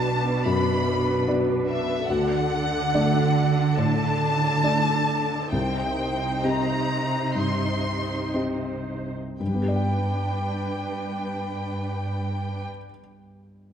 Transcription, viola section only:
0.00 2.05 D4 soft
0.00 2.05 B4 soft
2.10 5.50 D4 soft
2.10 5.50 A4 soft
5.54 9.16 D#4 soft
5.54 9.12 C5 soft
9.40 12.62 D4 soft
9.40 12.62 B4 soft

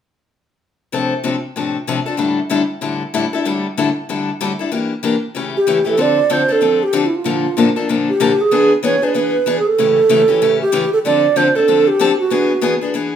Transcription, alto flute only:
5.57 5.85 G4 medium
5.88 6.03 A4 medium
6.01 6.34 D5 medium
6.33 6.54 C5 medium
6.52 6.85 A4 medium
6.83 7.08 G4 medium
7.06 7.17 E4 soft
7.16 7.77 F4 medium
8.09 8.43 G4 medium
8.41 8.72 G#4 medium
8.84 9.06 C#5 medium
9.04 9.58 B4 medium
9.59 9.68 G#4 medium
9.67 10.61 A4 medium
10.62 10.91 G4 medium
10.93 10.99 A4 medium
11.05 11.38 D5 medium
11.37 11.57 C5 medium
11.56 11.89 A4 medium
11.88 12.19 G4 medium
12.20 12.78 F#4 medium

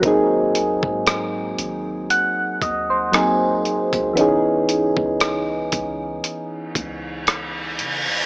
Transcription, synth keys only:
0.00 3.08 F#3 medium
0.00 3.09 A#3 medium
0.00 3.10 C4 medium
0.06 3.11 D#4 medium
0.06 3.12 G#4 medium
2.10 2.59 F#5 medium
2.62 2.89 D#5 medium
2.90 3.39 C5 medium
3.12 4.16 F#3 medium
3.12 4.17 A#3 medium
3.12 4.17 C4 medium
3.12 4.17 D#4 medium
3.12 4.18 G#4 medium
4.13 8.25 E3 medium
4.13 8.26 B3 medium
4.13 8.26 C#4 medium
4.19 8.26 D#4 medium
4.19 8.26 G#4 medium

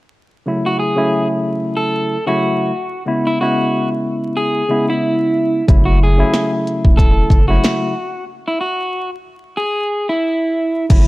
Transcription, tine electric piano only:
0.46 0.93 C#3 medium
0.46 0.93 F#3 medium
0.46 0.94 A3 medium
0.46 0.94 E4 medium
0.96 2.15 C#3 loud
0.96 2.16 F#3 medium
0.96 2.16 A3 medium
0.96 2.16 E4 loud
2.26 2.70 C#3 medium
2.26 2.71 F#3 medium
2.26 2.71 A3 medium
2.26 2.71 E4 loud
3.06 3.37 C#3 medium
3.06 3.37 G#3 medium
3.06 3.38 B3 medium
3.06 3.38 E4 loud
3.40 4.62 C#3 medium
3.40 4.62 G#3 medium
3.40 4.62 B3 medium
3.40 4.63 E4 loud
4.69 5.61 C#3 loud
4.69 5.61 G#3 medium
4.69 5.61 B3 medium
4.69 5.62 E4 loud
5.67 6.15 C#3 medium
5.67 6.15 F#3 medium
5.67 6.15 A3 medium
5.67 6.16 E4 medium
6.17 7.37 C#3 loud
6.17 7.37 F#3 medium
6.17 7.38 A3 medium
6.17 7.38 E4 loud
7.48 7.92 C#3 medium
7.48 7.92 F#3 medium
7.48 7.93 A3 medium
7.48 7.93 E4 loud
10.89 11.07 C#3 medium
10.89 11.07 F#3 medium
10.89 11.07 A3 medium
10.89 11.07 E4 loud

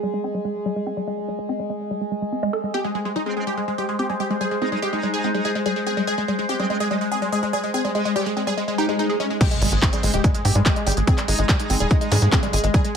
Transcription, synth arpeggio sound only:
0.03 0.10 G3 medium
0.14 0.24 G#3 medium
0.24 0.28 C4 medium
0.34 0.39 G3 medium
0.45 0.52 G#3 medium
0.66 0.73 G3 medium
0.76 0.86 G#3 medium
0.87 0.91 C4 medium
0.97 1.01 G3 medium
1.07 1.15 G#3 medium
1.28 1.35 G3 medium
1.39 1.49 G#3 medium
1.49 1.53 C4 medium
1.60 1.64 G3 medium
1.70 1.77 G#3 medium
1.91 1.98 G3 medium
2.01 2.10 G#3 medium
2.12 2.21 G#3 medium
2.22 2.29 G#3 medium
2.32 2.40 C4 medium
2.43 2.50 G#3 loud
2.53 2.60 A4 loud
2.64 2.74 G#3 medium
2.74 2.78 C4 medium
2.85 2.89 G3 medium
2.95 3.02 G#3 medium
3.05 3.15 G#3 medium
3.16 3.23 G3 medium
3.37 3.41 C4 medium
3.47 3.51 G3 medium
3.57 3.65 G#3 medium
3.68 3.78 G#3 medium
3.78 3.85 G3 medium
3.99 4.03 C4 medium
4.10 4.14 G3 medium
4.20 4.27 G#3 medium
4.30 4.40 G#3 medium
4.41 4.48 G3 medium
4.62 4.66 C4 medium
4.72 4.76 G3 medium
4.82 4.90 G#3 medium
4.93 5.03 G#3 medium
5.03 5.10 G3 medium
5.24 5.28 C4 medium
5.34 5.39 G3 medium
5.45 5.52 G#3 medium
5.55 5.65 G#3 medium
5.66 5.73 G3 medium
5.87 5.91 C4 medium
5.97 6.01 G3 medium
6.07 6.15 G#3 medium
6.18 6.28 G#3 medium
6.28 6.35 G3 medium
6.49 6.53 C4 medium
6.59 6.64 G3 medium
6.70 6.77 G#3 medium
6.80 6.90 G#3 medium
6.91 6.98 G3 medium
7.12 7.16 C4 medium
7.22 7.26 G3 medium
7.32 7.40 G#3 medium
7.43 7.53 G#3 medium
7.53 7.60 G3 medium
7.74 7.78 C4 medium
7.84 7.89 G3 medium
7.95 8.02 G#3 medium
8.05 8.15 G#3 medium
8.16 8.23 G3 medium
8.37 8.41 C4 medium
8.47 8.51 G3 medium
8.57 8.65 G#3 medium
8.68 8.78 G#3 medium
8.78 8.85 D#4 loud
8.89 8.99 G#3 loud
8.99 9.03 D#4 medium
9.09 9.14 G#4 medium
9.20 9.27 G#3 medium
9.41 9.48 G#3 medium
9.51 9.61 G#3 medium
9.62 9.69 G3 medium
9.82 9.87 C4 medium
9.93 9.97 G3 medium
10.03 10.10 G#3 medium
10.14 10.24 G#3 medium
10.24 10.31 G3 medium
10.45 10.49 C4 medium
10.55 10.60 G3 medium
10.66 10.73 G#3 medium
10.76 10.86 G#3 medium
10.87 10.94 G3 medium
11.07 11.12 C4 medium
11.18 11.22 G3 medium
11.28 11.35 G#3 medium
11.39 11.49 G#3 medium
11.49 11.56 G3 medium
11.70 11.74 C4 medium
11.80 11.85 G3 medium
11.91 11.98 G#3 medium
12.01 12.11 G#3 medium
12.12 12.19 G3 medium
12.32 12.37 C4 medium
12.43 12.47 G3 medium
12.53 12.60 G#3 medium
12.64 12.74 G#3 medium
12.74 12.81 G3 medium

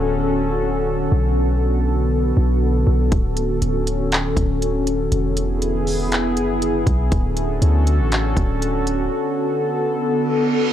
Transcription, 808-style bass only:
0.00 1.08 D1 loud
1.12 2.33 B1 loud
2.37 2.85 B1 loud
2.87 3.11 B1 loud
3.12 3.60 D1 loud
3.62 4.34 D1 loud
4.37 5.09 D1 loud
5.12 6.38 E1 loud
6.37 6.84 F#1 loud
6.87 7.11 B1 loud
7.12 7.60 D1 loud
7.62 8.01 D2 loud
7.99 8.35 A1 loud
8.37 9.09 D1 loud

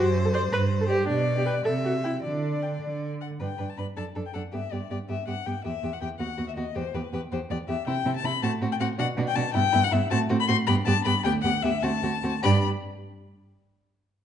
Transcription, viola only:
0.25 0.29 A4 medium
0.34 0.41 C5 loud
0.52 0.60 B4 loud
0.81 0.88 A4 medium
0.89 1.08 G4 loud
1.08 1.36 D4 medium
1.37 1.46 G4 medium
1.46 1.54 B4 medium
1.65 1.73 A4 medium
1.84 1.92 F#4 medium
2.04 2.12 E4 medium
2.24 2.81 D4 medium
3.41 3.48 D4 soft
3.59 3.67 D4 soft
3.78 3.86 D4 soft
3.97 4.04 D4 soft
4.16 4.23 D4 soft
4.35 4.42 D4 soft
4.53 4.61 B3 soft
4.72 4.80 B3 soft
4.91 4.98 B3 soft
5.09 5.16 B3 soft
5.27 5.35 B3 soft
5.46 5.54 B3 soft
5.64 5.72 B3 soft
5.83 5.90 B3 soft
6.01 6.09 B3 soft
6.19 6.27 B3 medium
6.38 6.46 B3 soft
6.57 6.64 B3 soft
6.75 6.83 B3 medium
6.94 7.02 B3 soft
7.13 7.21 B3 medium
7.32 7.39 B3 medium
7.50 7.58 B3 medium
7.69 7.76 B3 medium
7.87 7.94 C4 medium
8.05 8.13 C4 medium
8.23 8.31 C4 medium
8.42 8.50 C4 medium
8.61 8.69 C4 medium
8.80 8.87 C4 medium
8.98 9.06 D4 medium
9.17 9.25 D4 medium
9.36 9.43 D4 medium
9.55 9.62 B3 medium
9.74 9.81 B3 medium
9.93 10.00 B3 medium
10.11 10.19 C4 medium
10.30 10.38 C4 medium
10.48 10.56 C4 medium
10.67 10.75 B3 medium
10.87 10.94 B3 medium
11.06 11.13 B3 medium
11.25 11.33 B3 medium
11.44 11.52 B3 medium
11.64 11.72 B3 medium
11.83 11.91 C4 medium
12.04 12.12 C4 medium
12.24 12.32 C4 medium
12.43 12.64 D4 medium

